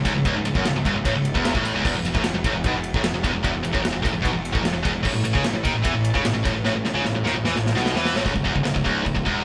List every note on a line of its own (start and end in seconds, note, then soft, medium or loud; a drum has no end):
0.05 0.14 C#1 medium
0.05 0.13 C#2 loud
0.05 kick loud
0.05 snare soft
0.05 ride medium
0.14 0.24 C#1 medium
0.14 0.24 C#2 medium
0.25 0.34 C#1 medium
0.25 0.34 C#2 loud
0.25 kick loud
0.25 ride medium
0.35 0.43 C#1 medium
0.35 0.44 C#2 medium
0.44 0.53 C#1 medium
0.44 0.55 C#2 medium
0.44 ride medium
0.55 0.64 F#1 loud
0.55 0.64 F#2 medium
0.55 kick loud
0.64 0.74 C#1 medium
0.64 0.75 C#2 medium
0.64 snare loud
0.64 ride loud
0.74 0.83 C#1 medium
0.74 0.85 C#2 medium
0.85 0.93 G1 medium
0.85 0.94 G2 loud
0.85 kick loud
0.85 ride medium
0.94 1.03 C#1 medium
0.94 1.05 C#2 medium
1.05 1.13 A1 loud
1.05 1.14 A2 loud
1.05 kick loud
1.05 ride loud
1.14 1.33 C#1 medium
1.14 1.31 C#2 medium
1.25 ride medium
1.34 1.53 E1 loud
1.34 1.54 E2 medium
1.34 kick loud
1.45 snare loud
1.45 ride loud
1.55 1.73 A1 loud
1.55 1.74 A2 loud
1.55 kick loud
1.65 snare soft
1.65 ride medium
1.74 1.83 C#1 medium
1.74 1.84 C#2 loud
1.85 1.93 E1 medium
1.85 1.94 E2 loud
1.85 kick loud
1.85 crash loud
1.93 2.02 E1 medium
1.93 2.05 E2 medium
2.03 2.13 E1 medium
2.03 2.15 E2 medium
2.03 ride medium
2.15 2.22 A1 medium
2.15 2.24 A2 loud
2.15 kick loud
2.22 2.32 E1 medium
2.22 2.33 E2 medium
2.22 snare loud
2.22 ride loud
2.33 2.43 E1 medium
2.33 2.44 E2 medium
2.44 2.52 A1 medium
2.44 2.54 A2 loud
2.44 kick loud
2.44 ride medium
2.53 2.63 E1 medium
2.53 2.64 E2 medium
2.64 2.72 B1 medium
2.64 2.74 B2 loud
2.64 kick loud
2.64 ride loud
2.72 2.92 E1 medium
2.72 2.91 E2 medium
2.84 ride medium
2.94 3.02 A1 loud
2.94 3.04 A2 loud
2.94 kick loud
3.03 3.13 E1 medium
3.03 3.13 E2 medium
3.03 snare loud
3.03 ride loud
3.13 3.23 E1 medium
3.13 3.22 E2 medium
3.24 3.32 E1 medium
3.24 3.32 E2 loud
3.24 kick loud
3.24 snare soft
3.24 ride medium
3.33 3.43 E1 medium
3.33 3.42 E2 medium
3.43 3.54 E1 loud
3.43 3.52 E2 loud
3.43 kick loud
3.43 ride loud
3.53 3.64 E1 medium
3.53 3.62 E2 medium
3.63 3.74 E1 medium
3.63 3.72 E2 medium
3.63 ride medium
3.73 3.84 A1 loud
3.73 3.82 A2 loud
3.73 kick loud
3.82 3.94 E1 medium
3.82 3.91 E2 medium
3.82 snare loud
3.82 ride loud
3.92 4.04 E1 medium
3.92 4.02 E2 medium
4.02 4.14 A1 loud
4.02 4.12 A2 loud
4.02 kick loud
4.02 ride medium
4.12 4.24 E1 medium
4.12 4.22 E2 medium
4.22 4.34 B1 loud
4.22 4.32 B2 loud
4.22 kick loud
4.22 ride loud
4.33 4.53 E1 medium
4.33 4.50 E2 medium
4.45 ride medium
4.53 4.64 A1 loud
4.53 4.62 A2 loud
4.53 kick loud
4.62 4.73 E1 medium
4.62 4.72 E2 medium
4.62 snare loud
4.62 ride loud
4.73 4.83 E1 medium
4.73 4.82 E2 medium
4.83 4.93 E1 medium
4.83 4.92 E2 loud
4.83 kick loud
4.83 ride medium
4.93 5.03 E1 medium
4.93 5.03 E2 medium
5.03 5.13 A1 loud
5.03 5.12 A2 loud
5.03 kick loud
5.03 crash loud
5.13 5.22 A1 medium
5.13 5.23 A2 medium
5.23 5.33 A1 medium
5.23 5.34 A2 medium
5.23 ride medium
5.34 5.43 C#2 loud
5.34 5.43 C#3 loud
5.34 kick loud
5.44 5.53 A1 medium
5.44 5.52 A2 medium
5.44 snare loud
5.44 ride loud
5.53 5.63 A1 medium
5.53 5.64 A2 medium
5.64 5.73 D#2 loud
5.64 5.74 D#3 loud
5.64 kick loud
5.64 ride medium
5.74 5.83 A1 medium
5.74 5.84 A2 medium
5.84 5.93 E2 loud
5.84 5.93 E3 loud
5.84 kick loud
5.84 ride loud
5.94 6.13 A1 medium
5.94 6.10 A2 medium
6.05 ride medium
6.14 6.23 C#2 loud
6.14 6.24 C#3 loud
6.14 kick loud
6.23 6.33 A1 medium
6.23 6.33 A2 medium
6.23 snare loud
6.23 ride loud
6.34 6.44 A1 medium
6.34 6.43 A2 medium
6.44 6.53 A1 loud
6.44 6.53 A2 loud
6.44 kick loud
6.44 ride medium
6.53 6.63 A1 medium
6.53 6.63 A2 medium
6.64 6.73 A1 loud
6.64 6.74 A2 loud
6.64 snare medium
6.74 6.83 A1 medium
6.74 6.84 A2 medium
6.84 6.93 A1 medium
6.84 6.95 A2 medium
6.84 snare medium
6.93 7.02 C#2 loud
6.93 7.04 C#3 loud
7.03 7.12 A1 medium
7.03 7.14 A2 medium
7.03 snare medium
7.13 7.23 A1 medium
7.13 7.25 A2 medium
7.23 7.33 D#2 medium
7.23 7.34 D#3 loud
7.23 snare medium
7.33 7.43 A1 medium
7.33 7.45 A2 medium
7.43 7.53 E2 loud
7.43 7.55 E3 loud
7.43 snare medium
7.53 7.73 A1 medium
7.53 7.71 A2 medium
7.53 snare medium
7.66 snare medium
7.74 7.94 B1 loud
7.74 7.95 B2 loud
7.74 snare medium
7.86 snare loud
7.94 8.14 E2 medium
7.94 8.14 E3 loud
7.94 snare medium
8.05 snare loud
8.14 8.25 A1 loud
8.14 8.24 A2 loud
8.14 snare loud
8.24 8.35 C#1 medium
8.24 8.33 C#2 loud
8.24 kick loud
8.24 crash medium
8.34 8.45 C#1 medium
8.34 8.44 C#2 medium
8.34 kick medium
8.44 8.55 E1 medium
8.44 8.54 E2 loud
8.44 kick medium
8.55 8.64 C#1 medium
8.55 8.62 C#2 medium
8.55 kick medium
8.64 8.75 C#1 medium
8.64 8.73 C#2 medium
8.64 snare loud
8.64 crash medium
8.74 8.85 C#1 medium
8.74 8.83 C#2 medium
8.74 kick medium
8.74 snare soft
8.84 9.05 C#1 medium
8.84 9.03 C#2 loud
8.84 kick medium
8.84 snare soft
9.05 9.15 C#1 medium
9.05 9.14 C#2 medium
9.05 kick medium
9.05 crash medium
9.15 9.25 C#1 medium
9.15 9.25 C#2 medium
9.15 kick medium
9.25 9.44 E1 loud
9.25 9.44 E2 loud
9.25 kick medium